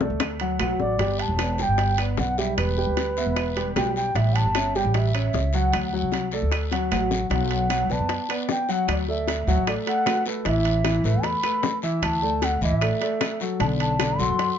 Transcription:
0.01 A3 A4 D5, low bongo
0.10 D2
0.20 low bongo, high timbale, claves
0.40 F#3 F#4 F#5, high timbale
0.59 B1 F#3 F#4 F#5, high timbale, low timbale, claves
0.80 A1 D5, low bongo
0.98 G1 G3 G4 G5, high bongo, high timbale, long guiro
1.19 A5, high timbale
1.28 E1
1.39 B3 B4 D5, high bongo, high timbale, short guiro, claves
1.58 G3 G4 G5 A5, high bongo, short guiro
1.62 G5
1.68 G1
1.78 high bongo, high timbale, long guiro
1.98 B3 B4 D5, high bongo, high timbale, claves
2.17 B1 F#5, high bongo, low bongo, short guiro
2.38 G3 G4 E5 G5, high bongo, short guiro
2.57 E1 B4, high bongo, high timbale, long guiro, claves
2.78 G3 G4 G5, high bongo
2.87 D2
2.97 high bongo, high timbale, short guiro
3.17 B3 B4 E5, short guiro
3.26 E1
3.36 high bongo, high timbale, long guiro, claves
3.57 G3 G4 G5, high bongo, high timbale
3.76 B1 G3 G4 G5, high bongo, low bongo, high timbale, low timbale, short guiro, claves
3.96 G5, high bongo, short guiro
4.15 A1 G3 G4 E5 G5, high bongo, high timbale, long guiro
4.36 A5, high timbale
4.45 G1
4.55 C#4 C#5 E5, high bongo, high timbale, short guiro, claves
4.75 G3 G4 G5, high bongo, short guiro
4.84 A1
4.94 E5, high bongo, high timbale, long guiro
5.15 C#4 C#5 E5, high bongo, high timbale, claves
5.33 C#2, high bongo, low bongo, short guiro
5.53 F#3 F#4 F#5, high bongo, short guiro
5.72 D2, high bongo, high timbale, long guiro, claves
5.93 F#3 F#4 F#5, high bongo
6.03 C2
6.12 high bongo, high timbale, short guiro
6.31 A3 A4 D5, short guiro
6.42 D2
6.52 high bongo, high timbale, long guiro, claves
6.72 F#3 F#4 F#5, high bongo, high timbale
6.91 A1 F#3 F#4 F#5, high timbale, low timbale, short guiro, claves
7.11 low bongo, short guiro
7.30 B1 F#3 F#4 F#5, high bongo, high timbale, long guiro
7.51 F#5, high timbale
7.70 F#3 F#4 F#5, high bongo, high timbale, short guiro, claves
7.89 B1 B3 B4 D5 A5, high bongo, short guiro
8.00 F#2
8.09 high bongo, high timbale, long guiro
8.29 B3 B4 D5, high bongo, high timbale, claves
8.49 G5, high bongo, low bongo, short guiro
8.69 F#3 F#4 F#5, high bongo, short guiro
8.88 D2 D5, high bongo, high timbale, long guiro, claves
9.08 A3 A4 D5 E5, high bongo
9.28 high bongo, high timbale, short guiro
9.47 D2 F#3 F#4 F#5, short guiro
9.56 A1
9.67 A3 A4 D5, high bongo, high timbale, long guiro, claves
9.87 A3 A4 D5 F#5, high bongo, high timbale
10.06 high bongo, low bongo, high timbale, low timbale, short guiro, claves
10.26 A3 A4 B4, high bongo, short guiro
10.45 A1 E3 E4 E5, high bongo, high timbale, long guiro
10.65 high timbale
10.84 E3 E4 E5, high bongo, high timbale, short guiro, claves
11.04 A1 A3 A4 B4, high bongo, short guiro
11.14 E2
11.23 B5, high bongo, high timbale, long guiro
11.43 A3 A4 B4, high bongo, high timbale, claves
11.63 high bongo, low bongo, short guiro
11.82 E3 E4 E5, high bongo, short guiro
12.02 D2 A5, high bongo, high timbale, long guiro, claves
12.22 A3 A4 D5, high bongo
12.42 F#5, high bongo, high timbale, short guiro
12.61 D2 E3 E4 D#5 E5, short guiro
12.71 A1
12.77 E5
12.81 A3 A4 D5, high bongo, high timbale, long guiro, claves
13.01 A3 A4 D5, high bongo, high timbale
13.21 high bongo, low bongo, high timbale, short guiro, claves
13.40 F#3 F#4 A4, high bongo, short guiro
13.60 B1 D3 D4 D5 A5, high bongo, high timbale, long guiro
13.80 A5, high timbale
13.99 D3 D4 D5, high bongo, high timbale, short guiro, claves
14.19 B1 F#3 F#4 A4 C6, high bongo, short guiro
14.29 F#2
14.39 high bongo, high timbale, long guiro

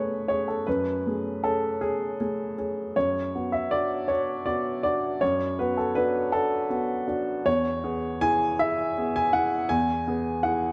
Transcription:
Already playing: F#2 A3 C#4 G#4 B4 C#5
0.28 C#4 G#4 C#5
0.48 A4
0.67 F#2 B4
1.07 A3 G#4
1.44 C#4 G#4 A4
1.81 C#4 G#4
2.20 A3 G#4
2.58 C#4 G#4
2.96 F#2 C#5
3.35 B3 F#4
3.52 E5
3.71 D4 F#4 D5
4.08 D4 F#4 C#5
4.46 B3 F#4 D5
4.83 D4 F#4 D5
5.21 F#2 C#5
5.59 B3 F#4 B4
5.77 A4
5.95 D4 F#4 B4
6.32 D4 F#4 A4
6.70 B3 F#4
7.08 D4 F#4
7.46 E2 C#5
7.83 B3 G#4
8.21 E4 G#4 G#5
8.59 E4 G#4 E5
8.98 B3 G#4
9.16 G#5
9.33 E4 G#4 F#5
9.69 E2 G#5
10.07 B3 G#4
10.43 E4 G#4 F#5

